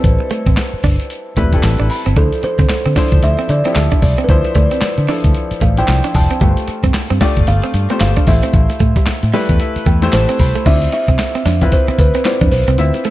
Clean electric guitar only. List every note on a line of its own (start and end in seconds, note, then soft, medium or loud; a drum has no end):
0.20 muted clean electric guitar stroke soft
0.31 0.44 A3 medium
0.47 0.55 C4 medium
0.84 0.97 D4 medium
1.37 1.50 A3 medium
1.80 1.88 D4 medium
1.90 muted clean electric guitar stroke soft
2.06 2.15 C4 medium
2.17 2.30 D4 medium
2.43 muted clean electric guitar stroke soft
2.59 2.68 C4 medium
2.70 muted clean electric guitar stroke soft
2.86 2.94 C4 medium
2.96 3.09 D4 medium
3.39 3.47 C4 medium
3.49 muted clean electric guitar stroke soft
3.65 3.74 C4 medium
3.92 4.00 D4 medium
4.02 muted clean electric guitar stroke soft
4.18 4.27 C4 medium
4.45 muted clean electric guitar stroke soft
4.56 4.68 A3 medium
4.72 4.80 C4 medium
5.09 5.21 D4 medium
5.62 5.75 A3 medium
6.04 6.13 D4 medium
6.15 muted clean electric guitar stroke soft
6.31 6.39 C4 medium
6.41 6.54 G3 medium
6.68 muted clean electric guitar stroke soft
6.84 6.92 C4 medium
6.94 muted clean electric guitar stroke soft
7.10 7.19 C4 medium
7.21 7.34 D4 medium
7.64 7.72 C4 medium
7.74 muted clean electric guitar stroke soft
7.90 7.99 C4 medium
8.17 8.25 D4 medium
8.27 muted clean electric guitar stroke soft
8.43 8.52 C4 medium
8.70 muted clean electric guitar stroke soft
8.80 8.93 A3 medium
8.97 9.05 G3 medium
9.34 9.46 G3 medium
9.87 9.99 A3 medium
10.29 10.37 C4 medium
10.39 muted clean electric guitar stroke soft
10.55 10.64 A3 medium
10.66 10.79 D4 medium
10.93 muted clean electric guitar stroke soft
11.09 11.17 C4 medium
11.19 muted clean electric guitar stroke soft
11.35 11.44 C4 medium
11.46 11.59 D4 medium
11.88 11.97 C4 medium
11.99 muted clean electric guitar stroke soft
12.15 12.23 C4 medium
12.41 12.50 D4 medium
12.52 muted clean electric guitar stroke soft
12.68 12.76 C4 medium
12.95 muted clean electric guitar stroke soft
13.05 13.10 A3 medium